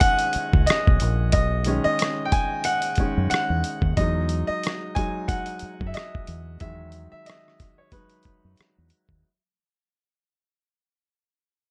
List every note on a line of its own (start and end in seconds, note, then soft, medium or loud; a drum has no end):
0.00 1.66 D#3 medium
0.00 1.67 G#3 soft
0.00 1.68 C#4 medium
0.00 0.66 D#5 medium
0.00 3.99 E5 medium
0.00 0.69 F#5 loud
0.00 2.32 G#5 loud
0.00 kick medium
0.00 closed hi-hat medium
0.19 closed hi-hat soft
0.33 muted fingered electric bass stroke soft
0.33 closed hi-hat soft
0.53 0.66 C#2 medium
0.53 kick medium
0.66 1.15 D#5 medium
0.66 cross-stick loud
0.66 closed hi-hat medium
0.87 1.00 B1 medium
0.87 kick medium
1.00 1.34 A#1 medium
1.00 closed hi-hat medium
1.32 1.78 B1 medium
1.32 1.83 D#5 medium
1.32 kick medium
1.32 closed hi-hat medium
1.64 2.61 D#3 soft
1.64 2.61 G#3 soft
1.64 2.62 C#4 medium
1.64 closed hi-hat medium
1.84 2.23 D#5 medium
1.84 muted fingered electric bass stroke soft
1.99 cross-stick medium
1.99 closed hi-hat medium
2.25 2.32 G5 medium
2.32 2.66 G#5 medium
2.32 kick medium
2.32 closed hi-hat medium
2.64 3.27 F#5 loud
2.64 closed hi-hat medium
2.82 closed hi-hat medium
2.96 3.28 D#3 soft
2.96 3.28 G#3 soft
2.96 muted fingered electric bass stroke soft
2.96 kick medium
2.96 closed hi-hat soft
3.00 3.29 C#4 soft
3.18 3.30 F#2 medium
3.30 3.78 F#5 medium
3.30 muted fingered electric bass stroke soft
3.30 closed hi-hat medium
3.34 cross-stick loud
3.50 3.62 E2 medium
3.64 closed hi-hat medium
3.82 3.95 D#2 medium
3.82 kick medium
3.97 4.42 E2 loud
3.97 4.94 F#3 soft
3.97 4.95 G#3 soft
3.97 4.95 D#4 medium
3.97 4.46 D#5 medium
3.97 kick loud
3.97 closed hi-hat medium
4.29 closed hi-hat medium
4.47 4.97 D#5 medium
4.47 muted fingered electric bass stroke soft
4.63 cross-stick loud
4.63 closed hi-hat medium
4.95 5.25 F#3 soft
4.95 5.26 G#3 soft
4.95 5.26 D#4 soft
4.95 5.29 G#5 medium
4.95 kick medium
4.95 closed hi-hat medium
5.28 5.90 F#5 medium
5.28 kick medium
5.28 closed hi-hat medium
5.46 closed hi-hat soft
5.59 muted fingered electric bass stroke soft
5.59 closed hi-hat soft
5.81 5.93 F#2 medium
5.81 kick medium
5.87 5.94 E5 medium
5.94 6.42 D#5 medium
5.94 cross-stick loud
5.94 closed hi-hat medium
6.15 kick medium
6.27 6.57 E2 medium
6.27 closed hi-hat medium
6.60 7.06 E2 medium
6.60 7.56 D#3 medium
6.60 7.55 F#3 soft
6.60 7.56 G#3 soft
6.60 7.08 E5 medium
6.60 kick loud
6.60 closed hi-hat medium
6.92 closed hi-hat soft
7.12 7.25 E5 medium
7.12 muted fingered electric bass stroke soft
7.26 7.79 D#5 medium
7.26 cross-stick loud
7.26 closed hi-hat medium
7.48 cross-stick soft
7.60 kick medium
7.60 cross-stick soft
7.60 closed hi-hat medium
7.78 7.93 C#5 medium
7.92 8.22 F#3 soft
7.92 8.22 G#3 soft
7.92 8.22 D#4 soft
7.92 8.87 B4 medium
7.92 kick medium
7.92 closed hi-hat medium
8.10 closed hi-hat soft
8.23 muted fingered electric bass stroke soft
8.23 kick medium
8.23 closed hi-hat soft
8.45 8.57 F#2 medium
8.57 cross-stick loud
8.57 closed hi-hat medium
8.78 8.90 E2 medium
8.90 closed hi-hat medium
9.09 9.22 D#2 medium
9.09 kick medium